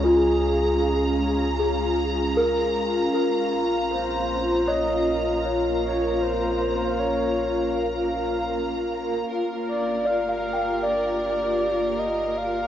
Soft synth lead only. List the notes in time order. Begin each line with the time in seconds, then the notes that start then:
0.04 G#4
3.90 C5
4.67 D#5
5.84 C#5
6.22 C5
6.99 C#5
9.68 D5
10.06 F5
10.83 D5
11.99 D#5
12.37 F5